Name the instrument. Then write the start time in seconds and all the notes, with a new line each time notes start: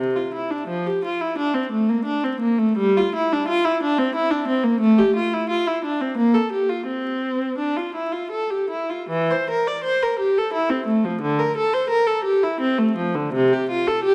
viola
Already playing: C3
0.15 F4
0.34 E4
0.50 D4
0.67 F3
0.86 G4
1.05 F4
1.21 E4
1.38 D4
1.54 C4
1.71 A3
1.89 A#3
2.05 D4
2.24 C4
2.40 A#3
2.58 A3
2.77 G3
2.97 F4
3.15 E4
3.33 D4
3.48 F4
3.65 E4
3.83 D4
3.98 C4
4.15 E4
4.30 D4
4.48 C4
4.64 A#3
4.80 A3
4.98 G4
5.16 F4
5.33 E4
5.49 F4
5.67 E4
5.84 D4
6.01 C4
6.17 A#3
6.35 A4
6.52 G4
6.69 F4
6.87 C4
7.58 D4
7.77 F4
7.95 E4
8.12 F4
8.31 A4
8.50 G4
8.70 E4
8.90 F4
9.09 E3
9.31 C5
9.50 A#4
9.67 D5
9.84 C5
10.03 A#4
10.19 G4
10.37 A4
10.53 E4
10.70 C4
10.86 A3
11.04 F3
11.21 D3
11.39 A#4
11.57 A4
11.74 C5
11.90 A#4
12.07 A4
12.24 G4
12.43 E4
12.60 C4
12.78 A3
12.96 F3
13.15 D3
13.34 C3
13.53 G4
13.70 F4
13.88 A4
14.04 G4